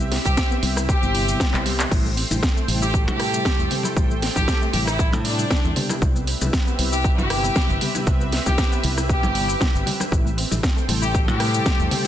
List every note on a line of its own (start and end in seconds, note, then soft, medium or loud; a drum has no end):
0.00 0.17 C2 loud
0.00 0.10 B3 medium
0.00 1.88 C4 medium
0.00 1.88 G4 medium
0.00 5.72 C5 medium
0.00 1.88 E5 medium
0.11 0.24 C4 medium
0.11 snare medium
0.11 open hi-hat loud
0.25 0.33 C2 medium
0.25 0.34 C3 medium
0.25 0.34 G3 medium
0.25 0.34 B3 medium
0.25 0.30 E4 medium
0.25 0.35 E4 medium
0.25 0.42 G4 loud
0.25 kick medium
0.25 shaker medium
0.37 0.46 G3 medium
0.37 kick loud
0.37 snare loud
0.37 shaker medium
0.51 0.58 B3 loud
0.51 shaker soft
0.63 0.94 C2 medium
0.63 0.79 C3 medium
0.63 0.79 G3 medium
0.63 0.79 B3 medium
0.63 0.68 C4 medium
0.63 0.79 E4 loud
0.63 open hi-hat medium
0.76 0.81 E4 loud
0.76 cross-stick medium
0.76 shaker medium
0.88 0.97 G3 medium
0.88 1.61 G4 medium
0.88 kick loud
0.88 shaker medium
1.02 1.33 G1 medium
1.02 1.25 C3 medium
1.02 1.26 G3 medium
1.02 1.13 B3 medium
1.02 1.26 B3 medium
1.02 1.26 E4 loud
1.02 shaker soft
1.14 1.19 E4 medium
1.14 open hi-hat loud
1.28 1.51 C3 medium
1.28 1.51 G3 medium
1.28 1.51 B3 medium
1.28 1.35 C4 medium
1.28 1.51 E4 medium
1.28 shaker medium
1.40 1.52 C4 loud
1.40 kick loud
1.40 snare loud
1.40 shaker medium
1.54 1.84 C2 loud
1.54 1.62 C3 medium
1.54 1.64 G3 medium
1.54 1.63 G3 medium
1.54 1.63 B3 medium
1.54 1.63 E4 medium
1.54 clap medium
1.54 shaker soft
1.65 1.89 C3 medium
1.65 1.89 G3 medium
1.65 1.78 G3 medium
1.65 1.89 B3 medium
1.65 1.89 G4 medium
1.65 open hi-hat medium
1.80 1.87 C4 medium
1.80 clap loud
1.80 shaker medium
1.91 2.23 A1 loud
1.91 2.07 C3 medium
1.91 2.07 G3 medium
1.91 1.99 G3 medium
1.91 5.72 A3 medium
1.91 2.07 A3 medium
1.91 2.07 E4 loud
1.91 5.72 A4 medium
1.91 5.72 G5 medium
1.91 kick loud
1.91 crash medium
1.91 shaker medium
2.05 2.16 A3 medium
2.05 shaker soft
2.17 2.29 C4 medium
2.17 open hi-hat loud
2.30 2.38 A1 medium
2.30 2.39 C3 medium
2.30 2.39 G3 medium
2.30 2.40 A3 medium
2.30 2.35 E4 medium
2.30 2.40 E4 medium
2.30 high conga medium
2.30 shaker medium
2.42 2.51 G3 medium
2.42 kick loud
2.42 snare loud
2.42 shaker medium
2.56 2.63 A3 loud
2.56 shaker soft
2.68 3.08 A1 medium
2.68 2.84 C3 medium
2.68 2.84 G3 medium
2.68 2.84 A3 medium
2.68 2.73 C4 medium
2.68 2.84 E4 loud
2.68 open hi-hat medium
2.82 2.86 E4 loud
2.82 2.98 G4 medium
2.82 shaker medium
2.94 3.02 G3 medium
2.94 kick loud
2.94 shaker medium
3.07 3.38 A2 medium
3.07 3.31 C3 medium
3.07 3.31 G3 medium
3.07 3.18 A3 medium
3.07 3.31 A3 medium
3.07 3.31 E4 loud
3.07 3.79 G4 loud
3.07 high conga medium
3.07 shaker soft
3.19 3.32 C4 medium
3.19 cross-stick medium
3.19 open hi-hat loud
3.33 3.55 C3 medium
3.33 3.56 G3 medium
3.33 3.56 A3 medium
3.33 3.38 E4 medium
3.33 3.56 E4 medium
3.33 shaker medium
3.45 3.53 G3 medium
3.45 kick loud
3.45 snare loud
3.45 high conga medium
3.45 shaker medium
3.59 3.67 E2 medium
3.59 3.68 C3 medium
3.59 3.68 G3 medium
3.59 3.66 A3 loud
3.59 3.68 A3 medium
3.59 3.68 E4 medium
3.59 shaker soft
3.70 3.94 C3 medium
3.70 3.94 G3 medium
3.70 3.94 A3 medium
3.70 3.76 C4 medium
3.70 3.94 G4 loud
3.70 open hi-hat medium
3.70 low conga medium
3.83 3.89 E4 loud
3.83 high conga medium
3.83 shaker medium
3.96 4.28 A1 medium
3.96 4.12 C3 medium
3.96 4.12 G3 medium
3.96 4.05 G3 medium
3.96 4.12 A3 medium
3.96 4.13 E4 loud
3.96 kick loud
3.96 shaker medium
4.11 4.21 A3 medium
4.11 shaker soft
4.22 4.34 C4 medium
4.22 snare medium
4.22 open hi-hat loud
4.36 4.43 A1 medium
4.36 4.44 C3 medium
4.36 4.45 G3 medium
4.36 4.45 A3 medium
4.36 4.40 E4 medium
4.36 4.45 E4 medium
4.36 4.52 G4 medium
4.36 kick medium
4.36 high conga medium
4.36 shaker medium
4.48 4.56 G3 medium
4.48 kick loud
4.48 snare loud
4.48 shaker medium
4.62 4.69 A3 loud
4.62 shaker soft
4.73 5.13 A1 loud
4.73 4.89 C3 medium
4.73 4.89 G3 medium
4.73 4.89 A3 medium
4.73 4.78 C4 medium
4.73 4.89 E4 loud
4.73 4.84 G4 medium
4.73 open hi-hat loud
4.73 high conga medium
4.87 5.03 E4 medium
4.87 4.92 E4 loud
4.87 cross-stick medium
4.87 shaker medium
4.99 5.07 G3 medium
4.99 kick loud
4.99 shaker medium
5.12 5.43 A2 loud
5.12 5.36 C3 medium
5.12 5.36 G3 medium
5.12 5.23 A3 medium
5.12 5.36 A3 medium
5.12 5.36 E4 medium
5.12 high conga medium
5.12 shaker soft
5.25 5.37 C4 medium
5.25 5.82 D4 loud
5.25 open hi-hat loud
5.39 5.61 C3 medium
5.39 5.61 G3 medium
5.39 5.61 A3 medium
5.39 5.43 E4 medium
5.39 5.61 E4 medium
5.39 shaker medium
5.50 5.59 G3 medium
5.50 kick loud
5.50 snare loud
5.50 high conga medium
5.50 shaker medium
5.64 5.72 E2 medium
5.64 5.73 C3 medium
5.64 5.73 G3 medium
5.64 5.71 A3 loud
5.64 5.73 A3 medium
5.64 5.73 E4 medium
5.64 shaker soft
5.76 5.99 C3 medium
5.76 5.99 G3 medium
5.76 5.99 B3 medium
5.76 10.08 C4 medium
5.76 5.81 C4 medium
5.76 10.08 G4 medium
5.76 5.99 G4 loud
5.76 10.08 B4 medium
5.76 10.08 E5 medium
5.76 open hi-hat medium
5.76 low conga medium
5.89 5.94 E4 loud
5.89 cross-stick medium
5.89 high conga loud
5.89 shaker medium
6.02 6.33 C2 loud
6.02 6.17 C3 loud
6.02 6.10 G3 medium
6.02 6.17 G3 medium
6.02 6.18 B3 medium
6.02 6.18 E4 loud
6.02 kick loud
6.02 shaker medium
6.16 6.26 B3 medium
6.16 shaker soft
6.27 6.40 C4 medium
6.27 open hi-hat loud
6.41 6.49 C2 medium
6.41 6.50 C3 medium
6.41 6.50 G3 medium
6.41 6.50 B3 medium
6.41 6.45 E4 medium
6.41 6.50 E4 medium
6.41 high conga loud
6.41 shaker medium
6.53 6.61 G3 medium
6.53 kick loud
6.53 snare loud
6.53 shaker medium
6.67 6.74 B3 loud
6.67 shaker soft
6.78 7.18 C2 medium
6.78 6.94 C3 loud
6.78 6.94 G3 medium
6.78 6.94 B3 medium
6.78 6.84 C4 medium
6.78 6.95 E4 loud
6.78 open hi-hat loud
6.92 6.97 E4 loud
6.92 7.09 G4 medium
6.92 shaker medium
7.04 7.12 G3 medium
7.04 kick loud
7.04 shaker medium
7.18 7.49 G1 loud
7.18 7.41 C3 medium
7.18 7.41 G3 medium
7.18 7.41 B3 medium
7.18 7.29 B3 medium
7.18 7.41 E4 loud
7.18 7.90 G4 loud
7.18 high conga loud
7.18 shaker soft
7.30 7.42 C4 medium
7.30 cross-stick medium
7.30 open hi-hat loud
7.44 7.66 C3 medium
7.44 7.66 G3 medium
7.44 7.66 B3 medium
7.44 7.48 E4 medium
7.44 7.67 E4 medium
7.44 shaker medium
7.56 7.64 G3 medium
7.56 kick loud
7.56 snare loud
7.56 high conga medium
7.56 shaker medium
7.69 7.77 G1 medium
7.69 7.78 C3 medium
7.69 7.78 G3 medium
7.69 7.77 B3 loud
7.69 7.78 B3 medium
7.69 7.78 E4 medium
7.69 shaker soft
7.81 8.04 C3 medium
7.81 8.04 G3 medium
7.81 8.04 B3 medium
7.81 7.86 C4 medium
7.81 8.04 G4 loud
7.81 open hi-hat medium
7.81 low conga medium
7.95 7.99 E4 loud
7.95 high conga medium
7.95 shaker medium
8.07 8.38 C2 loud
8.07 8.22 C3 loud
8.07 8.23 E4 loud
8.07 kick loud
8.07 shaker medium
8.21 8.31 B3 medium
8.21 shaker soft
8.32 8.45 C4 medium
8.32 snare medium
8.32 open hi-hat loud
8.46 8.54 C2 medium
8.46 8.55 C3 medium
8.46 8.55 G3 medium
8.46 8.55 B3 medium
8.46 8.50 E4 medium
8.46 8.55 E4 medium
8.46 8.63 G4 medium
8.46 kick medium
8.46 high conga loud
8.46 shaker medium
8.58 8.66 G3 medium
8.58 kick loud
8.58 snare loud
8.58 shaker medium
8.72 8.79 B3 loud
8.72 shaker soft
8.83 9.24 C2 loud
8.83 8.99 C3 loud
8.83 8.99 G3 medium
8.83 9.00 B3 medium
8.83 8.89 C4 medium
8.83 9.00 E4 loud
8.83 open hi-hat loud
8.83 high conga medium
8.97 9.02 E4 loud
8.97 cross-stick medium
8.97 shaker medium
9.09 9.17 G3 medium
9.09 9.81 G4 loud
9.09 kick loud
9.09 shaker medium
9.23 9.54 G1 medium
9.23 9.46 C3 medium
9.23 9.46 G3 medium
9.23 9.33 B3 medium
9.23 9.46 B3 medium
9.23 9.46 E4 medium
9.23 high conga medium
9.23 shaker soft
9.35 9.47 G3 loud
9.35 open hi-hat loud
9.48 9.56 E4 loud
9.48 shaker medium
9.60 9.70 C3 medium
9.60 9.71 G3 medium
9.60 9.71 B3 medium
9.60 9.71 E4 loud
9.60 9.65 B4 medium
9.60 kick loud
9.60 snare loud
9.60 high conga medium
9.60 shaker medium
9.74 9.82 G1 medium
9.74 9.79 G4 medium
9.74 shaker soft
9.86 9.98 G3 loud
9.86 open hi-hat medium
9.86 low conga medium
10.00 10.04 C4 medium
10.00 cross-stick medium
10.00 high conga loud
10.00 shaker medium
10.11 10.43 A1 loud
10.11 10.27 C3 loud
10.11 10.20 G3 medium
10.11 10.28 G3 medium
10.11 10.28 A3 medium
10.11 12.07 A3 medium
10.11 10.28 E4 loud
10.11 12.07 A4 medium
10.11 12.07 C5 medium
10.11 12.07 G5 medium
10.11 kick loud
10.11 shaker medium
10.26 10.36 A3 medium
10.26 shaker soft
10.38 10.50 C4 medium
10.38 open hi-hat loud
10.51 10.59 A1 medium
10.51 10.60 C3 medium
10.51 10.60 G3 medium
10.51 10.60 A3 medium
10.51 10.55 E4 medium
10.51 10.60 E4 medium
10.51 high conga medium
10.51 shaker medium
10.63 10.71 G3 medium
10.63 kick loud
10.63 snare loud
10.63 shaker medium
10.76 10.84 A3 loud
10.76 shaker soft
10.88 11.28 A1 loud
10.88 11.05 C3 loud
10.88 11.05 G3 medium
10.88 11.05 A3 medium
10.88 10.94 C4 medium
10.88 11.05 E4 loud
10.88 open hi-hat loud
10.88 high conga medium
11.02 11.07 E4 loud
11.02 11.19 G4 loud
11.02 shaker medium
11.14 11.22 G3 medium
11.14 kick loud
11.14 shaker medium
11.28 11.59 A2 medium
11.28 11.51 C3 medium
11.28 11.51 G3 medium
11.28 11.39 A3 medium
11.28 11.52 A3 medium
11.28 11.52 E4 medium
11.28 12.00 G4 loud
11.28 high conga medium
11.28 shaker soft
11.40 11.52 C4 medium
11.40 cross-stick medium
11.40 open hi-hat loud
11.54 11.76 C3 medium
11.54 11.77 G3 medium
11.54 11.77 A3 medium
11.54 11.58 E4 medium
11.54 11.77 E4 medium
11.54 shaker medium
11.66 11.74 G3 medium
11.66 kick loud
11.66 snare loud
11.66 high conga medium
11.66 shaker medium
11.79 11.87 E2 medium
11.79 11.88 C3 medium
11.79 11.88 G3 medium
11.79 11.86 A3 loud
11.79 11.88 A3 medium
11.79 11.89 E4 medium
11.79 shaker soft
11.91 12.07 C3 medium
11.91 12.07 G3 medium
11.91 12.07 A3 medium
11.91 11.96 C4 medium
11.91 12.07 G4 medium
11.91 open hi-hat medium
11.91 low conga medium